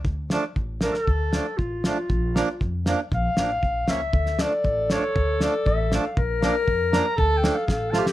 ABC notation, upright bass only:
X:1
M:2/4
L:1/8
Q:1/4=118
K:Dm
V:1 name="Upright bass" clef=bass
D,,2 A,,,2 | D,,2 A,,,2 | B,,,2 F,,2 | B,,, A,,, B,,, ^C,, |
D,,2 A,,,2 | D,,2 A,,,2 | B,,,2 F,,2 | D,,2 A,,,2 |]